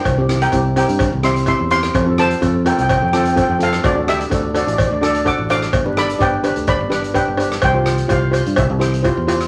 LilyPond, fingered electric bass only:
\new Staff \with { instrumentName = "Fingered electric bass" } { \clef bass \time 4/4 \key c \mixolydian \tempo 4 = 127 c,4 c,8. g,8 c,4 e,8. | f,4 f,8. c,8 f,4 f,8. | d,4 d,8. a,,8 d,4 a,,8. | g,,4 g,,8. d,8 g,,4 g,,8. |
c,4 c,8. g,16 c,16 c,4 e,8. | }